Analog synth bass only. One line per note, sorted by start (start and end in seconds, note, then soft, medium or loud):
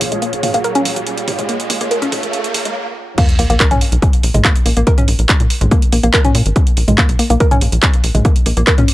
0.01 0.08 A#1 loud
0.12 0.19 A#1 medium
0.33 0.40 B1 medium
0.54 0.61 B1 medium
0.85 0.93 A#1 loud
0.96 1.03 A#1 medium
1.28 1.35 A#1 loud
1.39 1.46 A#1 medium
1.70 1.77 A#1 loud
1.81 1.88 A#1 medium
2.02 2.09 A#2 medium
2.23 2.30 A#1 medium
2.55 2.62 A#1 loud
2.66 2.72 A#1 medium
3.39 3.46 A#1 loud
3.50 3.57 A#1 medium
3.71 3.78 B1 medium
3.92 3.99 B1 medium
4.24 4.31 A#1 loud
4.35 4.41 A#1 medium
4.66 4.73 A#1 medium
4.77 4.84 A#1 medium
5.08 5.15 A#1 loud
5.19 5.26 A#1 medium
5.40 5.47 A#2 medium
5.61 5.68 A#1 medium
5.93 6.00 A#1 loud
6.04 6.10 A#1 medium
6.35 6.42 A#2 medium
6.46 6.53 G#1 medium
6.77 6.85 A#1 medium
6.88 6.95 A#1 medium
7.09 7.16 B1 medium
7.30 7.37 B1 medium
7.62 7.69 A#1 loud
7.72 7.79 A#1 medium
8.04 8.11 A#1 medium
8.15 8.22 A#1 medium
8.46 8.53 A#1 medium
8.57 8.64 A#1 medium
8.78 8.85 A#2 medium